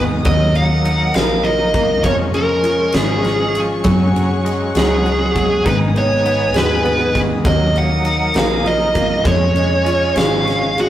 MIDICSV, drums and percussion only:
0, 0, Header, 1, 2, 480
1, 0, Start_track
1, 0, Tempo, 600601
1, 201, Time_signature, 6, 3, 24, 8
1, 8704, End_track
2, 0, Start_track
2, 0, Title_t, "Drums"
2, 198, Note_on_c, 9, 51, 74
2, 203, Note_on_c, 9, 36, 110
2, 278, Note_off_c, 9, 51, 0
2, 283, Note_off_c, 9, 36, 0
2, 441, Note_on_c, 9, 51, 41
2, 521, Note_off_c, 9, 51, 0
2, 681, Note_on_c, 9, 51, 51
2, 761, Note_off_c, 9, 51, 0
2, 911, Note_on_c, 9, 51, 60
2, 928, Note_on_c, 9, 38, 103
2, 991, Note_off_c, 9, 51, 0
2, 1008, Note_off_c, 9, 38, 0
2, 1154, Note_on_c, 9, 51, 37
2, 1234, Note_off_c, 9, 51, 0
2, 1390, Note_on_c, 9, 51, 54
2, 1392, Note_on_c, 9, 36, 85
2, 1470, Note_off_c, 9, 51, 0
2, 1472, Note_off_c, 9, 36, 0
2, 1628, Note_on_c, 9, 51, 72
2, 1631, Note_on_c, 9, 36, 100
2, 1708, Note_off_c, 9, 51, 0
2, 1711, Note_off_c, 9, 36, 0
2, 1869, Note_on_c, 9, 51, 41
2, 1949, Note_off_c, 9, 51, 0
2, 2107, Note_on_c, 9, 51, 54
2, 2187, Note_off_c, 9, 51, 0
2, 2337, Note_on_c, 9, 51, 59
2, 2355, Note_on_c, 9, 38, 106
2, 2417, Note_off_c, 9, 51, 0
2, 2434, Note_off_c, 9, 38, 0
2, 2593, Note_on_c, 9, 51, 36
2, 2605, Note_on_c, 9, 38, 30
2, 2673, Note_off_c, 9, 51, 0
2, 2685, Note_off_c, 9, 38, 0
2, 2837, Note_on_c, 9, 51, 55
2, 2917, Note_off_c, 9, 51, 0
2, 3069, Note_on_c, 9, 51, 73
2, 3075, Note_on_c, 9, 36, 112
2, 3149, Note_off_c, 9, 51, 0
2, 3155, Note_off_c, 9, 36, 0
2, 3326, Note_on_c, 9, 51, 41
2, 3406, Note_off_c, 9, 51, 0
2, 3564, Note_on_c, 9, 51, 51
2, 3644, Note_off_c, 9, 51, 0
2, 3796, Note_on_c, 9, 51, 56
2, 3813, Note_on_c, 9, 38, 116
2, 3876, Note_off_c, 9, 51, 0
2, 3893, Note_off_c, 9, 38, 0
2, 4043, Note_on_c, 9, 51, 39
2, 4123, Note_off_c, 9, 51, 0
2, 4282, Note_on_c, 9, 36, 85
2, 4284, Note_on_c, 9, 51, 54
2, 4362, Note_off_c, 9, 36, 0
2, 4364, Note_off_c, 9, 51, 0
2, 4521, Note_on_c, 9, 51, 72
2, 4522, Note_on_c, 9, 36, 103
2, 4601, Note_off_c, 9, 51, 0
2, 4602, Note_off_c, 9, 36, 0
2, 4762, Note_on_c, 9, 51, 40
2, 4842, Note_off_c, 9, 51, 0
2, 4999, Note_on_c, 9, 51, 52
2, 5079, Note_off_c, 9, 51, 0
2, 5227, Note_on_c, 9, 51, 55
2, 5245, Note_on_c, 9, 38, 108
2, 5307, Note_off_c, 9, 51, 0
2, 5325, Note_off_c, 9, 38, 0
2, 5478, Note_on_c, 9, 51, 36
2, 5558, Note_off_c, 9, 51, 0
2, 5715, Note_on_c, 9, 36, 86
2, 5718, Note_on_c, 9, 51, 56
2, 5795, Note_off_c, 9, 36, 0
2, 5797, Note_off_c, 9, 51, 0
2, 5954, Note_on_c, 9, 36, 114
2, 5955, Note_on_c, 9, 51, 73
2, 6034, Note_off_c, 9, 36, 0
2, 6035, Note_off_c, 9, 51, 0
2, 6199, Note_on_c, 9, 51, 41
2, 6279, Note_off_c, 9, 51, 0
2, 6432, Note_on_c, 9, 51, 53
2, 6512, Note_off_c, 9, 51, 0
2, 6665, Note_on_c, 9, 51, 52
2, 6682, Note_on_c, 9, 38, 117
2, 6744, Note_off_c, 9, 51, 0
2, 6762, Note_off_c, 9, 38, 0
2, 6920, Note_on_c, 9, 51, 40
2, 7000, Note_off_c, 9, 51, 0
2, 7155, Note_on_c, 9, 36, 88
2, 7161, Note_on_c, 9, 51, 59
2, 7235, Note_off_c, 9, 36, 0
2, 7241, Note_off_c, 9, 51, 0
2, 7394, Note_on_c, 9, 36, 109
2, 7396, Note_on_c, 9, 51, 76
2, 7474, Note_off_c, 9, 36, 0
2, 7476, Note_off_c, 9, 51, 0
2, 7637, Note_on_c, 9, 51, 40
2, 7717, Note_off_c, 9, 51, 0
2, 7882, Note_on_c, 9, 51, 51
2, 7962, Note_off_c, 9, 51, 0
2, 8117, Note_on_c, 9, 51, 55
2, 8135, Note_on_c, 9, 38, 106
2, 8197, Note_off_c, 9, 51, 0
2, 8214, Note_off_c, 9, 38, 0
2, 8371, Note_on_c, 9, 51, 38
2, 8383, Note_on_c, 9, 38, 32
2, 8451, Note_off_c, 9, 51, 0
2, 8463, Note_off_c, 9, 38, 0
2, 8615, Note_on_c, 9, 51, 53
2, 8695, Note_off_c, 9, 51, 0
2, 8704, End_track
0, 0, End_of_file